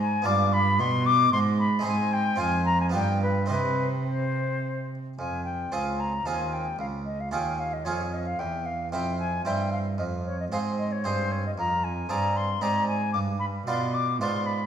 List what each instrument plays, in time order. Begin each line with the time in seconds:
Already playing: harpsichord G#2 G#4 D5, cello G#2
0.00 flute G#5
0.22 harpsichord B3 F4 D5, flute D6
0.27 harpsichord G2, cello G2
0.53 flute B5
0.79 harpsichord B2, cello B2, flute C6
1.06 flute D6
1.33 cello G#2, harpsichord G#2, flute C6
1.59 flute B5
1.79 harpsichord G#3 C4 D#4
1.84 harpsichord G#2 C5, cello G#2, flute G#5
2.13 flute G5
2.36 harpsichord C4 F4 C5, flute G#5
2.40 harpsichord F2, cello F2
2.65 flute A#5
2.80 flute G#5
2.90 harpsichord B3 F4 G4
2.94 harpsichord G2, cello G2, flute G5
3.22 flute B4
3.46 harpsichord C4 D#4 G4
3.50 harpsichord C3, cello C3, flute B4
4.07 flute C5
5.18 harpsichord F2, cello F2, flute G#5
5.45 flute G5
5.72 harpsichord C#2 C4 F4 G#4, cello C#2, flute G#5
6.00 flute A#5
6.26 cello D#2, harpsichord D#2 C4 F4 G#4, flute G#5
6.53 flute G5
6.79 harpsichord C#2, cello C#2, flute F5
7.05 flute D#5
7.20 flute F5
7.31 harpsichord D#2 C#4 F4 G#4, cello D#2, flute G5
7.59 flute F5
7.73 flute D#5
7.84 cello F2, harpsichord F2 C#4 F4 G#4, flute C#5
8.13 flute D#5
8.26 flute F5
8.39 cello E2, harpsichord E2, flute G5
8.66 flute F5
8.92 harpsichord F2 C4 E4 C5, cello F2, flute G5
9.19 flute G#5
9.45 harpsichord G2 C4 E4 C5, cello G2, flute G5
9.72 flute F5
9.98 cello F2, harpsichord F2, flute D#5
10.26 flute C#5
10.40 flute D#5
10.51 cello G#2, harpsichord G#2 C4 G#4 C5, flute F5
10.79 flute D#5
10.92 flute C#5
11.04 cello G2, harpsichord G2 C4 G#4 C5, flute C5
11.31 flute C#5
11.46 flute D#5
11.58 cello F2, harpsichord F2, flute A#5
11.84 flute G#5
12.09 harpsichord G2 C4 G#4 D5, cello G2, flute A#5
12.36 flute C6
12.61 harpsichord G#2 C4 G#4 D5, cello G#2, flute A#5
12.88 flute G#5
13.13 cello G2, harpsichord G2, flute D6
13.39 flute B5
13.66 cello B2, harpsichord B2 B3 F4 D5, flute C6
13.94 flute D6
14.19 cello G#2, harpsichord G#2 B3 F4 D5, flute C6
14.46 flute B5